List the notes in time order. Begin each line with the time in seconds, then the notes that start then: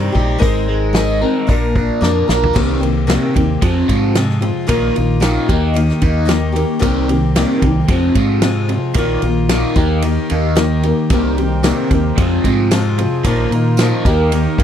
Already playing: C3 D#3 G3 C4 D#4 G4
0.12 A#1 C4 D#4 G4, kick
0.39 G#1 G#3 C4 D#4 A#4, kick, open hi-hat
0.69 G#3
0.93 G#3 C4 D#4 A#4, snare, open hi-hat
1.21 C4 D#4 A#4
1.47 A#1 A#2 A#3 D4 F4 A#4, kick, open hi-hat
1.76 D4, kick
2.01 F2 A#3 D4 F4 A#4, snare
2.27 A#1 D4 F4 A#4, snare
2.43 floor tom
2.53 C2 C3 D#3 G3 A#3 C4 G4, kick, crash
2.80 C3 D#3 A#3 C4 G4, ride
3.07 C3 D#3 G3 A#3 C4 G4, snare, ride
3.34 D#2 C3 D#3 A#3 C4 G4, kick, ride
3.61 F2 C3 F3 G#3 C4 F4, kick, ride
3.87 F2 G#2 C3 F3, kick, ride
4.15 F2 C3 F3 G#3 C4 F4, snare, ride
4.29 snare
4.41 F2 C3 F3 G#3 C4 F4, ride
4.67 A#1 A#2 D#3 A#3 D#4 F4, kick, ride
4.95 A#1 A#2 D#3 A#3 D#4 F4, ride
5.20 A#2 D#3 A#3 D#4 F4, snare, ride
5.48 D#2 D#3 A#3 D#4 G4, kick, ride
5.74 D#3 A#3 D#4 G4, ride
5.89 snare
6.01 D#2 D#3 A#3 D#4, kick, ride
6.25 D#3 A#3 D#4 G4, snare, ride
6.29 A#3
6.52 D#3 A#3 D#4 G4, ride
6.57 A#3
6.79 C2 C3 D#3 A#3 C4 G4, kick, ride
6.84 G3
7.08 C3 D#3 A#3 C4 G4, ride
7.35 C3 D#3 G3 A#3 C4 G4, snare, ride
7.62 C2 C3 D#3 A#3 C4 G4, kick, ride
7.88 F2 C3 F3 G#3 C4 F4, kick, ride
8.15 F2 G#2 C3 F3, kick, ride
8.42 F2 C3 F3 G#3 C4 F4, snare, ride
8.69 F2 C3 G#3 C4 F4, ride
8.74 F3
8.94 A#1 A#2 D#3 A#3, kick, ride
8.98 A#3 D#4 F4
9.22 A#1 A#2 D#3 D#4 F4, ride
9.27 A#3
9.49 A#2 D#3 A#3 D#4 F4, snare, ride
9.76 D#2 D#3 A#3 D#4 G4, kick, ride
9.80 A#3
10.02 D#3 A#3 D#4 G4, ride
10.30 D#2 D#3 A#3 D#4, ride
10.55 D#3 A#3 D#4 G4, snare, ride
10.83 D#3 A#3 D#4 G4, ride
11.10 C2 C3 D#3 G3 A#3 C4 D#4 G4 A#4 C5, kick, ride
11.38 C3 D#3 A#3 C4 G4, ride
11.63 C3 D#3 G3 A#3 C4 G4, snare, ride, tambourine
11.90 D#2 C3 D#3 A#3 C4 G4, kick, ride
12.16 F2 C3 F3 C4 F4 G#4 C5, kick, ride
12.21 G#3 C4 F4
12.44 F2 G#2 C3 F3, kick, ride
12.71 F2 C3 F3 G#3 C4 F4, snare, ride, tambourine
12.98 F2 C3 F3 G#3 C4 F4, ride
13.24 A#1 A#2 D#3 F3 A#3 D#4 F4 A#4, kick, ride
13.28 F4
13.51 A#2 D#3 D#4 F4, ride
13.55 A#3
13.77 A#2 D#3 A#3, snare, ride, tambourine
13.81 F3 A#3 D#4 F4
14.04 D#2 D#3 A#3 D#4 G4 A#4, kick, ride
14.08 A#3 D#4
14.31 D#3 A#3 D#4, ride
14.35 G4
14.58 D#2 D#3 A#3 D#4, kick, ride